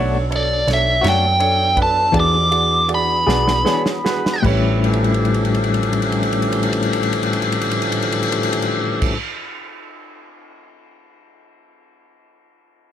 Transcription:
0.00 0.63 B1 medium
0.00 0.16 B2 medium
0.00 2.12 F#3 medium
0.00 0.16 A3 medium
0.00 2.12 B3 medium
0.00 0.16 D4 medium
0.00 0.21 D4 medium
0.00 2.11 D4 medium
0.00 0.17 F#4 medium
0.00 0.21 A4 medium
0.00 2.12 A4 medium
0.00 0.21 C#5 loud
0.30 0.57 D4 medium
0.30 0.58 A4 soft
0.30 0.58 C#5 medium
0.30 ride medium
0.36 0.68 D5 loud
0.67 1.00 B1 medium
0.67 0.94 D4 medium
0.67 0.94 A4 medium
0.67 0.94 C#5 medium
0.67 snare soft
0.67 ride medium
0.74 1.05 E5 medium
1.01 2.10 F#2 medium
1.01 1.26 A3 soft
1.01 1.30 D4 medium
1.01 1.25 D4 soft
1.01 1.24 F#4 medium
1.01 1.30 A4 medium
1.01 1.30 C#5 medium
1.01 ride medium
1.06 1.77 G5 medium
1.06 snare loud
1.39 1.67 D4 medium
1.39 1.67 A4 medium
1.39 1.67 C#5 medium
1.39 ride medium
1.76 2.04 D4 medium
1.76 2.04 A4 soft
1.76 2.04 B4 medium
1.76 kick medium
1.76 ride medium
1.82 2.16 A5 medium
2.12 3.24 E2 loud
2.12 2.35 E3 medium
2.12 2.51 F3 medium
2.12 2.36 B3 medium
2.12 2.52 C4 medium
2.12 2.36 D4 medium
2.12 2.51 D#4 medium
2.12 2.42 F#4 medium
2.12 2.42 G#4 medium
2.12 2.36 G#4 medium
2.12 2.52 A4 medium
2.12 2.42 D5 medium
2.12 kick loud
2.12 ride medium
2.20 2.90 D6 loud
2.51 4.43 E3 medium
2.51 4.43 B3 medium
2.51 4.42 D4 medium
2.51 2.79 F#4 medium
2.51 2.79 G#4 medium
2.51 4.42 G#4 medium
2.51 2.80 D5 medium
2.51 ride medium
2.88 3.17 F#4 medium
2.88 3.17 G#4 medium
2.88 3.18 D5 medium
2.88 ride medium
2.95 4.43 B5 loud
3.27 3.63 B1 loud
3.27 3.51 B3 soft
3.27 3.51 D4 soft
3.27 3.56 F#4 medium
3.27 3.50 G#4 medium
3.27 3.56 G#4 medium
3.27 3.56 D5 medium
3.27 snare medium
3.48 snare medium
3.65 3.89 E3 medium
3.65 3.89 B3 medium
3.65 3.90 D4 medium
3.65 3.95 F#4 medium
3.65 3.95 G#4 medium
3.65 3.90 G#4 medium
3.65 3.95 C#5 medium
3.65 snare medium
3.86 snare medium
4.04 4.34 F#4 medium
4.04 4.34 G#4 medium
4.04 4.35 B4 medium
4.04 snare medium
4.26 snare medium
4.42 9.14 A1 medium
4.42 9.17 A2 medium
4.42 9.18 D3 medium
4.42 9.18 F3 medium
4.42 9.13 G4 medium
4.42 9.18 A4 medium
4.42 9.13 B4 medium
4.42 9.15 C#5 medium
4.42 kick medium
4.42 crash medium
4.46 9.19 G3 medium
4.46 9.21 C#4 medium
4.53 9.22 E4 medium
4.84 9.14 E3 medium
4.84 9.14 A3 medium
4.84 9.14 C#4 medium
4.84 9.14 G4 medium
4.84 crash soft
4.93 ride soft
5.04 crash soft
5.14 ride soft
5.25 crash soft
5.34 ride medium
5.45 crash medium
5.54 ride medium
5.64 crash soft
5.74 ride medium
5.83 crash medium
5.93 ride medium
6.02 crash medium
6.12 ride medium
6.23 crash medium
6.33 ride medium
6.42 crash medium
6.52 ride medium
6.63 crash medium
6.73 ride medium
6.83 crash medium
6.93 ride medium
7.03 crash medium
7.13 ride medium
7.23 crash medium
7.33 ride medium
7.42 crash medium
7.52 ride medium
7.61 crash medium
7.71 ride medium
7.82 crash medium
7.92 ride medium
8.02 crash medium
8.12 ride medium
8.23 crash medium
8.32 ride medium
8.43 crash medium
8.53 ride medium
8.62 crash medium
9.02 kick loud
9.02 crash medium

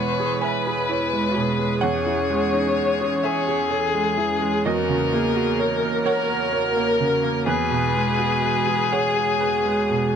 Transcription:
0.00 1.79 E2 soft
0.00 1.36 B2 soft
0.00 1.13 G#3 soft
0.00 1.82 G#3 soft
0.00 1.83 E4 medium
0.00 1.85 E4 soft
0.00 0.42 B4 medium
0.00 0.33 C#5 soft
0.00 0.44 C#5 soft
0.00 4.64 C#5 soft
0.00 0.38 F#5 medium
0.20 0.56 G#4 soft
0.41 0.91 B4 soft
0.41 1.80 B4 soft
0.41 0.80 E5 soft
0.41 1.78 G#5 medium
0.67 1.04 G#4 soft
0.89 1.37 E4 soft
0.89 1.27 C#5 soft
1.13 1.50 G#3 soft
1.36 1.73 B2 soft
1.36 3.25 G#4 medium
1.59 1.82 G#3 soft
1.81 4.62 E2 medium
1.81 4.61 E3 medium
1.81 4.65 C#4 medium
1.81 3.26 C#5 medium
1.81 3.19 F#5 medium
2.07 2.44 E3 soft
2.30 2.67 G#3 soft
2.54 2.91 D#4 soft
2.77 3.15 C#5 soft
3.01 3.38 G#4 soft
3.23 4.66 G#4 medium
3.23 3.70 C#5 medium
3.23 4.61 E5 soft
3.47 3.85 G#4 soft
3.71 4.19 A4 medium
3.71 4.08 C#5 soft
3.94 4.32 G#3 soft
4.17 4.56 E3 soft
4.17 4.66 G#4 soft
4.41 4.65 G#3 soft
4.65 7.44 E2 medium
4.65 7.48 A#3 medium
4.65 5.15 F#4 medium
4.65 7.48 F#4 medium
4.65 6.05 A#4 medium
4.65 7.44 C#5 medium
4.65 6.03 D#5 medium
4.89 5.27 C#3 soft
5.13 5.51 A#3 soft
5.13 5.62 G#4 medium
5.36 5.74 F#4 soft
5.59 7.48 A#4 medium
5.59 5.97 C#5 soft
5.83 6.21 A#4 soft
6.06 7.45 A#4 medium
6.06 6.51 C#5 medium
6.06 6.44 F#5 soft
6.29 6.67 A#4 soft
6.53 6.91 C#5 soft
6.76 7.14 A#3 soft
7.00 7.38 C#3 soft
7.23 7.47 A#3 soft
7.46 10.16 E2 medium
7.46 10.16 G#3 medium
7.46 10.16 F#4 medium
7.46 10.16 G#4 medium
7.46 8.41 B4 medium
7.46 10.16 B4 medium
7.46 8.94 B4 medium
7.70 8.09 B2 soft
7.94 8.33 G#3 soft
8.18 8.58 F#4 soft
8.43 8.82 B4 soft
8.67 9.07 G#4 soft
8.92 10.16 G#4 medium
8.92 10.16 C#5 medium
8.92 9.31 F#5 soft
9.17 9.56 G#4 soft
9.40 9.80 B4 soft
9.65 10.05 G#3 soft
9.90 10.16 B2 soft

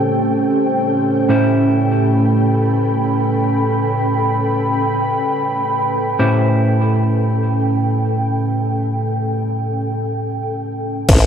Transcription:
0.00 1.26 A2 medium
0.00 11.05 A3 medium
0.00 1.26 C#4 medium
0.00 11.04 C#4 medium
0.00 11.09 C#4 medium
0.00 1.26 E4 medium
0.00 1.26 G4 medium
0.00 11.05 G4 medium
0.00 11.09 A4 medium
0.00 1.25 C5 medium
0.00 1.26 C5 medium
0.00 11.09 G5 medium
1.28 6.16 A2 medium
1.28 6.16 C#4 medium
1.28 6.16 E4 medium
1.28 6.16 G4 medium
1.28 6.16 C5 medium
1.28 11.05 B5 medium
6.19 11.06 A2 medium
6.19 11.06 C#4 medium
6.19 11.06 E4 medium
6.19 11.06 G4 medium
6.19 11.06 C5 medium
11.09 11.26 A1 medium
11.09 kick loud
11.09 crash loud

